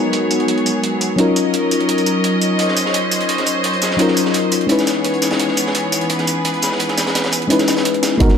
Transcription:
0.00 4.65 F#3 medium
0.00 1.15 G#3 medium
0.00 1.14 B3 medium
0.00 1.16 B3 medium
0.00 1.16 D#4 medium
0.00 1.17 F#4 medium
0.00 1.15 G#4 medium
0.00 1.18 A#4 medium
0.00 1.16 C#5 medium
0.13 closed hi-hat medium
0.13 tambourine soft
0.31 closed hi-hat medium
0.31 tambourine medium
0.40 closed hi-hat soft
0.48 closed hi-hat medium
0.58 closed hi-hat soft
0.66 closed hi-hat medium
0.66 tambourine soft
0.84 closed hi-hat medium
1.01 closed hi-hat medium
1.01 tambourine medium
1.16 3.96 F#3 medium
1.16 3.97 C#4 medium
1.16 4.66 C#4 medium
1.16 3.97 D#4 medium
1.16 3.98 F4 medium
1.16 2.57 A#4 medium
1.16 4.66 D#5 medium
1.16 closed hi-hat medium
1.21 3.98 A#4 medium
1.36 closed hi-hat medium
1.36 tambourine medium
1.54 closed hi-hat medium
1.54 tambourine soft
1.71 closed hi-hat medium
1.71 tambourine medium
1.80 closed hi-hat soft
1.89 closed hi-hat medium
1.98 closed hi-hat soft
1.98 tambourine soft
2.06 closed hi-hat medium
2.06 tambourine medium
2.24 closed hi-hat medium
2.41 closed hi-hat medium
2.41 tambourine medium
2.59 4.67 C5 medium
2.59 closed hi-hat medium
2.68 snare soft
2.77 closed hi-hat medium
2.77 tambourine medium
2.86 snare soft
2.94 closed hi-hat medium
2.94 tambourine soft
3.11 closed hi-hat medium
3.11 tambourine medium
3.21 closed hi-hat soft
3.29 closed hi-hat medium
3.38 snare soft
3.38 closed hi-hat soft
3.46 closed hi-hat medium
3.46 tambourine medium
3.64 closed hi-hat medium
3.73 closed hi-hat soft
3.82 snare medium
3.82 closed hi-hat medium
3.82 tambourine medium
3.91 snare soft
3.97 4.66 F#3 medium
3.97 4.67 C#4 medium
3.97 4.67 D#4 medium
3.97 4.68 F4 medium
3.97 closed hi-hat medium
4.02 4.69 A#4 medium
4.08 snare soft
4.17 closed hi-hat medium
4.17 tambourine medium
4.25 snare soft
4.34 closed hi-hat medium
4.34 tambourine soft
4.52 closed hi-hat medium
4.52 tambourine medium
4.61 closed hi-hat soft
4.67 8.17 E3 medium
4.67 7.46 G#3 medium
4.67 8.17 B3 medium
4.67 7.47 C#4 medium
4.67 7.48 D#4 medium
4.67 7.49 E4 medium
4.67 8.17 G#4 medium
4.67 6.08 C#5 medium
4.67 closed hi-hat medium
4.72 7.49 B4 medium
4.79 snare medium
4.79 closed hi-hat soft
4.79 tambourine soft
4.87 snare medium
4.87 closed hi-hat medium
4.87 tambourine medium
5.04 closed hi-hat medium
5.14 closed hi-hat soft
5.22 snare soft
5.22 closed hi-hat medium
5.22 tambourine medium
5.31 snare loud
5.31 closed hi-hat medium
5.39 closed hi-hat medium
5.48 snare soft
5.57 closed hi-hat medium
5.57 tambourine medium
5.66 snare soft
5.75 closed hi-hat medium
5.75 tambourine soft
5.92 closed hi-hat medium
5.92 tambourine medium
6.01 closed hi-hat soft
6.10 8.18 B4 medium
6.10 closed hi-hat medium
6.19 snare soft
6.19 closed hi-hat soft
6.27 closed hi-hat medium
6.27 tambourine medium
6.45 closed hi-hat medium
6.54 closed hi-hat soft
6.62 snare medium
6.62 closed hi-hat medium
6.62 tambourine medium
6.72 snare soft
6.80 closed hi-hat medium
6.89 snare soft
6.89 closed hi-hat soft
6.97 snare medium
6.97 closed hi-hat medium
6.97 tambourine medium
7.07 snare loud
7.07 closed hi-hat medium
7.15 snare loud
7.15 closed hi-hat loud
7.15 closed hi-hat medium
7.15 tambourine soft
7.24 snare loud
7.24 closed hi-hat medium
7.32 closed hi-hat medium
7.32 tambourine medium
7.42 closed hi-hat soft
7.48 8.16 G#3 medium
7.48 8.18 C#4 medium
7.48 8.18 D#4 medium
7.48 8.19 E4 medium
7.48 closed hi-hat medium
7.52 8.19 B4 medium
7.59 snare medium
7.59 closed hi-hat soft
7.59 tambourine soft
7.68 snare loud
7.68 closed hi-hat medium
7.68 tambourine medium
7.77 snare loud
7.77 closed hi-hat medium
7.85 closed hi-hat loud
7.94 closed hi-hat soft
8.03 snare loud
8.03 closed hi-hat medium
8.03 tambourine medium
8.18 8.38 G#1 loud
8.18 8.38 G#3 loud
8.18 8.38 B3 loud
8.18 8.38 D#4 medium
8.18 8.38 F#4 loud
8.18 kick loud
8.18 closed hi-hat medium
8.23 8.38 A#4 loud
8.29 snare soft
8.29 closed hi-hat soft

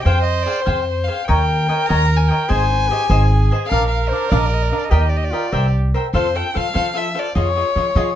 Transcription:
0.04 0.45 F2 medium
0.04 0.18 G#4 medium
0.04 1.03 C5 loud
0.04 0.18 C5 medium
0.04 0.18 F5 medium
0.04 0.22 G5 medium
0.04 0.18 G5 medium
0.23 0.44 D#5 medium
0.43 0.58 G#4 medium
0.43 0.59 C5 medium
0.43 0.63 D5 medium
0.47 0.59 F5 medium
0.47 0.59 G5 medium
0.61 1.05 C5 medium
0.65 1.07 F2 medium
0.65 0.79 G#4 medium
0.65 0.79 C5 medium
0.65 0.79 F5 medium
0.65 0.79 G5 medium
1.04 1.20 G#4 soft
1.04 1.20 C5 medium
1.04 1.26 F5 medium
1.09 1.20 F5 soft
1.09 1.21 G5 medium
1.24 1.41 C#5 medium
1.24 1.41 D#5 medium
1.24 1.88 G5 loud
1.29 1.69 D#2 medium
1.29 1.67 A#4 medium
1.29 1.41 G5 medium
1.29 1.41 A#5 medium
1.68 2.51 A#4 loud
1.68 1.81 C#5 medium
1.68 1.81 D#5 medium
1.68 1.81 G5 medium
1.68 1.82 A#5 medium
1.86 2.29 D#2 loud
1.86 2.02 C#5 medium
1.86 2.02 D#5 medium
1.86 2.02 G5 medium
1.86 2.18 A#5 loud
1.86 2.02 A#5 medium
2.16 2.29 G#5 medium
2.28 2.41 C#5 soft
2.28 2.42 D#5 medium
2.28 2.51 G5 loud
2.28 2.42 G5 medium
2.28 2.43 A#5 medium
2.49 2.89 G#1 medium
2.49 2.62 G#4 medium
2.49 2.90 C5 loud
2.49 2.62 C5 medium
2.49 2.62 D#5 medium
2.49 3.51 G#5 loud
2.49 2.62 G#5 medium
2.89 3.11 G4 medium
2.89 3.03 G#4 medium
2.89 3.03 C5 medium
2.89 3.03 D#5 medium
2.89 3.03 G#5 medium
3.10 3.49 G#1 loud
3.10 3.71 G#4 medium
3.10 3.23 G#4 medium
3.10 3.23 C5 medium
3.10 3.23 D#5 medium
3.10 3.23 G#5 loud
3.51 3.63 G#4 medium
3.51 3.63 C5 medium
3.51 3.63 D#5 medium
3.51 3.64 G#5 medium
3.66 4.92 A#4 loud
3.66 3.87 F5 loud
3.71 4.10 A#1 medium
3.71 3.83 D4 medium
3.71 3.83 A#4 medium
3.71 3.84 D5 medium
3.71 3.84 F5 medium
3.88 4.10 F5 medium
4.09 4.23 D4 medium
4.09 4.23 A#4 medium
4.09 4.31 C5 medium
4.09 4.24 D5 medium
4.09 4.23 F5 medium
4.29 4.70 A#1 loud
4.29 4.44 D4 medium
4.29 4.44 A#4 medium
4.29 4.40 D5 medium
4.29 4.44 D5 medium
4.29 4.44 F5 medium
4.38 4.47 D#5 medium
4.46 4.55 D5 medium
4.53 4.64 D#5 medium
4.62 4.71 D5 medium
4.69 4.83 D4 medium
4.69 4.83 A#4 soft
4.69 4.84 D5 medium
4.69 4.79 D#5 medium
4.69 4.83 F5 soft
4.78 4.86 D5 medium
4.84 4.95 D#5 medium
4.90 5.31 D#2 loud
4.90 5.32 G4 loud
4.90 5.03 G4 medium
4.90 5.03 A#4 medium
4.90 5.02 D5 medium
4.90 5.03 D#5 loud
4.90 5.04 G5 medium
5.01 5.11 D#5 medium
5.09 5.18 D5 medium
5.17 5.25 D#5 medium
5.24 5.72 D5 medium
5.31 5.54 F4 medium
5.31 5.44 G4 soft
5.31 5.44 A#4 medium
5.31 5.44 D#5 medium
5.31 5.45 G5 medium
5.52 5.92 C2 medium
5.52 5.93 G4 medium
5.52 5.65 A#4 medium
5.52 5.65 C5 medium
5.52 5.65 E5 medium
5.52 5.65 G5 medium
5.94 6.06 A#4 medium
5.94 6.06 C5 medium
5.94 6.06 E5 medium
5.94 6.06 G5 medium
6.14 6.40 F2 medium
6.14 6.26 F4 medium
6.14 6.26 A4 medium
6.14 6.37 C5 loud
6.14 6.26 C5 medium
6.14 6.27 F5 loud
6.34 6.46 F4 soft
6.34 6.47 A4 medium
6.34 6.47 C5 soft
6.34 6.47 F5 soft
6.34 6.58 G5 medium
6.54 6.68 F3 medium
6.54 6.66 F4 medium
6.54 6.66 A4 medium
6.54 6.67 C5 medium
6.54 6.67 F5 medium
6.54 6.98 F5 loud
6.74 7.15 F3 medium
6.74 6.87 F4 medium
6.74 6.87 A4 medium
6.74 6.87 C5 medium
6.74 6.87 F5 medium
6.94 7.07 F4 soft
6.94 7.07 A4 medium
6.94 7.07 C5 medium
6.94 7.20 E5 medium
6.94 7.08 F5 soft
7.14 7.26 F4 soft
7.14 7.27 A4 medium
7.14 7.27 C5 medium
7.14 7.27 F5 soft
7.19 7.37 D5 medium
7.35 7.62 F2 medium
7.35 7.48 F4 medium
7.35 7.48 G#4 medium
7.35 7.48 C#5 medium
7.35 8.15 C#5 loud
7.35 7.48 D#5 medium
7.56 7.68 F4 soft
7.56 7.68 G#4 soft
7.56 7.68 C#5 soft
7.56 7.69 D#5 soft
7.76 7.89 F3 medium
7.76 7.88 F4 medium
7.76 7.88 G#4 medium
7.76 7.88 C#5 medium
7.76 7.88 D#5 medium
7.95 8.15 F3 loud
7.95 8.08 F4 medium
7.95 8.08 G#4 medium
7.95 8.09 C#5 medium
7.95 8.09 D#5 medium

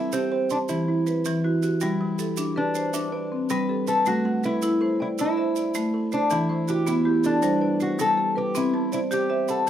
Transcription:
0.00 0.13 C4 medium
0.00 0.14 E4 medium
0.00 0.50 D5 medium
0.00 0.50 E5 medium
0.00 0.31 A5 medium
0.12 0.48 C4 medium
0.12 0.50 G4 medium
0.12 0.30 C5 medium
0.12 maracas medium
0.32 0.69 C5 medium
0.32 0.88 G5 medium
0.50 0.56 D4 medium
0.50 0.88 A5 medium
0.50 1.07 C6 medium
0.50 maracas medium
0.68 1.07 E3 medium
0.68 1.40 E4 medium
0.68 0.88 G4 medium
0.68 maracas medium
0.88 1.43 E4 medium
1.07 1.63 B4 medium
1.07 maracas medium
1.25 1.63 E3 medium
1.25 maracas medium
1.44 2.00 E4 medium
1.44 1.62 F#4 medium
1.62 2.00 F#4 medium
1.62 2.00 G4 medium
1.62 maracas medium
1.81 2.19 G3 medium
1.81 2.53 E4 medium
1.81 2.19 F#4 medium
1.81 maracas medium
2.01 2.38 G3 medium
2.19 2.36 G4 medium
2.19 2.75 A4 medium
2.19 maracas medium
2.37 2.75 D4 medium
2.37 2.55 G4 medium
2.37 maracas medium
2.56 3.53 D4 medium
2.56 2.94 G4 medium
2.56 3.13 B4 medium
2.75 3.32 C5 medium
2.75 maracas medium
2.93 3.31 D4 medium
2.93 3.50 E5 medium
2.93 maracas medium
3.12 3.69 B4 medium
3.12 3.69 D5 medium
3.32 3.88 C4 medium
3.50 3.87 G3 medium
3.50 3.88 G3 medium
3.50 3.88 B4 loud
3.50 maracas medium
3.69 4.25 G4 medium
3.69 4.25 A4 medium
3.87 4.07 A4 loud
3.87 4.25 B4 medium
3.87 maracas medium
4.06 4.44 G3 medium
4.06 4.44 A3 medium
4.06 4.45 F#4 loud
4.06 maracas medium
4.25 4.62 A3 medium
4.25 4.81 F#5 medium
4.43 5.01 E4 loud
4.43 4.61 A4 medium
4.43 5.00 B4 medium
4.43 maracas medium
4.62 5.00 E4 medium
4.62 4.80 A4 medium
4.62 maracas medium
4.81 5.18 A4 medium
4.81 5.37 C5 medium
5.00 5.07 E4 medium
5.00 5.55 D5 medium
5.00 5.56 G5 medium
5.18 5.56 E4 medium
5.18 6.16 E4 medium
5.18 maracas medium
5.37 5.94 C5 medium
5.37 5.93 E5 medium
5.56 6.12 D5 medium
5.56 maracas medium
5.74 6.12 A3 medium
5.74 maracas medium
5.94 6.30 A4 medium
6.12 6.30 D4 medium
6.12 6.48 C5 medium
6.12 6.50 C5 medium
6.12 maracas medium
6.30 6.68 E3 medium
6.30 6.70 E4 medium
6.30 6.68 A4 medium
6.30 maracas medium
6.49 6.87 E3 medium
6.49 7.06 C5 medium
6.68 6.86 E4 medium
6.68 7.24 F#4 medium
6.68 6.88 G4 medium
6.68 maracas medium
6.87 7.24 B3 medium
6.87 7.04 E4 medium
6.87 7.26 E4 medium
6.87 maracas medium
7.05 7.43 E4 medium
7.05 7.61 G4 medium
7.24 7.77 D4 medium
7.24 7.62 A4 medium
7.24 7.80 D5 medium
7.24 maracas medium
7.42 7.80 G3 medium
7.42 7.62 B3 medium
7.42 7.80 C5 medium
7.42 maracas medium
7.61 8.18 B4 medium
7.61 8.18 D5 medium
7.80 8.01 F#4 medium
7.80 8.36 C5 medium
7.80 maracas medium
7.99 8.36 G3 medium
7.99 8.37 A4 medium
7.99 maracas medium
8.17 8.54 G4 medium
8.17 8.74 A4 medium
8.36 8.56 G4 medium
8.36 8.73 B4 medium
8.36 8.74 B4 medium
8.55 8.92 C4 medium
8.55 8.93 E4 medium
8.55 8.92 G4 medium
8.55 maracas medium
8.74 9.11 C4 medium
8.74 9.30 A5 medium
8.92 8.99 E4 medium
8.92 9.10 C5 medium
8.92 9.49 D5 medium
8.92 maracas medium
9.11 9.48 G4 medium
9.11 9.50 G4 medium
9.11 9.29 C5 medium
9.11 maracas medium
9.30 9.67 C5 medium
9.30 9.70 E5 medium
9.48 9.69 A4 medium
9.48 9.70 F#5 medium
9.48 9.70 B5 medium
9.48 maracas medium

